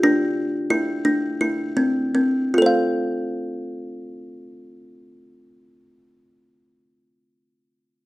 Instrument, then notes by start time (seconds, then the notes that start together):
kalimba
0.03 D4
0.70 E4
1.05 D4
1.41 E4
1.77 C4
2.15 C4
2.54 F4
2.58 A4
2.62 C5
2.66 F5